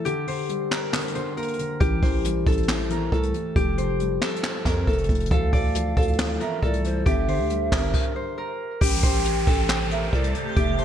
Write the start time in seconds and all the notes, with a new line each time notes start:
Already playing: A4 D5
0.05 D3 G4, closed hi-hat
0.27 D3 C5, open hi-hat
0.49 G3, closed hi-hat
0.71 A#4, snare, clap
0.93 D3, snare, clap
1.00 closed hi-hat
1.08 closed hi-hat
1.15 D3 C5, closed hi-hat
1.37 A#3 A#4, closed hi-hat
1.42 closed hi-hat
1.48 closed hi-hat
1.53 closed hi-hat
1.59 D3, closed hi-hat
1.80 A1 E3 G4, kick, closed hi-hat
2.02 A1 E3 C5, kick, open hi-hat
2.25 G3, hi-hat pedal
2.46 A1 A4, kick, closed hi-hat
2.52 closed hi-hat
2.57 closed hi-hat
2.63 closed hi-hat
2.68 E3, snare, clap
2.90 E3 A#4, closed hi-hat
3.12 C2 A3 A4, kick, closed hi-hat
3.23 closed hi-hat
3.34 E3, closed hi-hat
3.56 F1 F3 G4, kick, closed hi-hat
3.78 F3 C5, closed hi-hat
3.99 G3, closed hi-hat
4.22 A4, snare, clap
4.29 closed hi-hat
4.36 closed hi-hat
4.43 F3, snare, clap
4.65 F2 F3 A#4, kick, snare, closed hi-hat
4.87 F1 A3 A4, kick, closed hi-hat
4.93 closed hi-hat
4.98 closed hi-hat
5.04 closed hi-hat
5.09 F1 F3, kick, closed hi-hat
5.15 closed hi-hat
5.20 closed hi-hat
5.26 closed hi-hat
5.31 D2 E3 A4 F5, kick, closed hi-hat
5.52 D2 E3 D5, kick, open hi-hat
5.75 F3, hi-hat pedal
5.97 D2 A4, kick, closed hi-hat
6.02 closed hi-hat
6.08 closed hi-hat
6.13 closed hi-hat
6.19 E3, snare, clap
6.40 E3 A#4 E5, closed hi-hat
6.62 C2 A3 A4 D5, kick, closed hi-hat
6.73 closed hi-hat
6.84 E3 C5, closed hi-hat
7.06 G1 D3 G4 E5, kick, closed hi-hat
7.27 D3 C5, open hi-hat
7.39 D2
7.50 G3, closed hi-hat
7.72 G1 A#4, kick, snare, clap
7.94 kick, crash
8.16 C5
8.38 A#4
8.81 A1 C3 A3 G4 G5, kick, closed hi-hat, downlifter
9.03 A1 C5, kick, open hi-hat
9.25 hi-hat pedal
9.47 A1 A4, kick, closed hi-hat
9.53 closed hi-hat
9.58 closed hi-hat
9.64 closed hi-hat
9.69 snare, clap
9.91 A#4 E5, closed hi-hat
10.12 C2 A4 D5, kick, closed hi-hat
10.24 closed hi-hat
10.35 C5, closed hi-hat
10.57 F1 F3 G4 E5, kick, closed hi-hat
10.78 C5, closed hi-hat